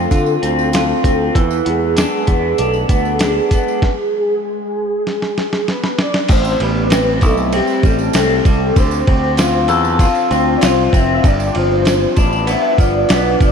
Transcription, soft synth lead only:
Already playing: A4
0.75 A4
1.37 E4
1.68 G#4
2.60 A4
2.92 A4
3.24 G#4
3.55 G#4
5.71 B4
6.02 D5
6.32 C5
6.63 B4
7.25 A4
7.55 G4
7.86 A4
8.78 C5
10.57 D5
10.65 C5
10.96 E5
11.27 D5
11.57 C5
12.18 B4
12.50 E5
12.80 D5

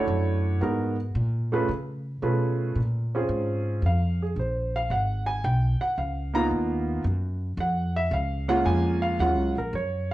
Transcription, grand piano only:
Already playing: A3 D4 E4 F#4 C#5
0.61 G#3 B3 D#4 F#4 A#4
1.52 A3 C#4 F4 G#4 B4
2.22 A3 C#4 F4 G#4 B4
3.15 C4 C#4 F4 G#4
3.86 F5
4.23 G#4
4.40 C5
4.76 F5
4.92 F#5
5.27 G#5
5.45 G5
5.81 F#5
5.98 F5
6.34 A#3 B3 D#4 F4 A#5
7.60 F#5
7.96 E5
8.14 F5
8.48 G#3 A#3 C#4 F4 F#5
8.66 G#5
9.02 F5
9.20 F#3 G#3 C#4 F4 F#5
9.58 A#4
9.75 C#5

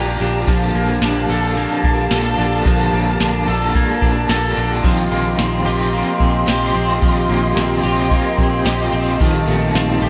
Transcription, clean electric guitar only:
Already playing: F3 A#3 D4 G4
0.21 D4
0.48 F3
0.75 A#3
1.02 D4
1.30 A4
1.57 A#3
1.84 D4
2.12 A4
2.39 D4
2.66 F3
2.93 A#3
3.20 D4
3.48 A4
3.75 A#3
4.02 D4
4.29 A4
4.57 D4
4.84 F3
5.11 A#3
5.38 C4
5.66 G4
5.93 A#3
6.20 C4
6.47 G4
6.74 C4
7.02 F3
7.29 A#3
7.57 C4
7.83 G4
8.11 A#3
8.38 C4
8.65 G4
8.93 C4
9.20 D#3
9.48 A3
9.75 C4
10.02 G4

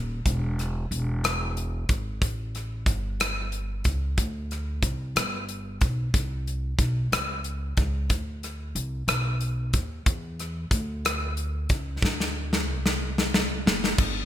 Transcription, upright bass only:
Already playing: D#1
0.26 E1
0.91 E1
1.90 G#1
2.22 A1
2.86 G1
3.86 C#2
4.18 D2
4.83 C2
5.16 G1
5.82 B1
6.14 C2
6.79 B1
7.12 C#2
7.78 C#2
8.10 D2
8.75 C2
9.08 B1
9.74 D#2
10.06 E2
10.71 D2
11.70 C#2
12.03 D2
12.68 C2
13.66 F#1
13.98 G1

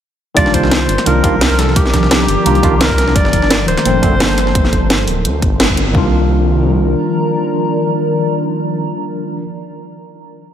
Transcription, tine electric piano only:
0.35 D#3 G3 A#3 D4 F4
1.05 D#3 G3 A#3 D4 F4
1.23 D#3 G3 A#3 D4 F4
2.45 D#3 G3 A#3 D4 F4
2.62 D#3 G3 A#3 D4 F4
3.85 A#2 D3 F3 A3 C4
4.02 A#2 D3 F3 A3 C4
5.92 D#3 G3 A#3
5.96 D4 F4

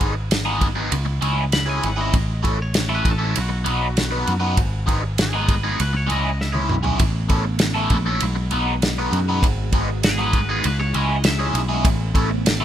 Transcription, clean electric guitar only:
1.53 B5
1.70 G#5
1.86 F#5
2.01 D#5
2.62 C#5
2.95 B4
3.11 A4
3.41 F#4
5.22 G#4
5.36 B4
5.68 G#4
5.81 B4
5.97 C#5
6.12 D#5
6.41 E5
10.05 G#4
10.21 B4
10.51 G#4
10.66 B4
10.80 C#5
10.95 D#5
11.26 E5

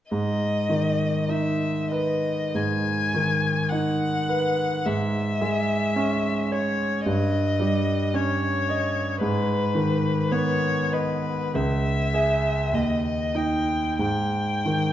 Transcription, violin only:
0.11 D#5
1.29 E5
1.92 D#5
2.56 G#5
3.69 F#5
4.85 E5
6.52 C#5
7.06 D#5
8.15 C#5
9.22 B4
10.32 C#5
10.93 B4
11.55 E5
12.74 D#5
13.06 D#5
13.36 G5
14.01 G5

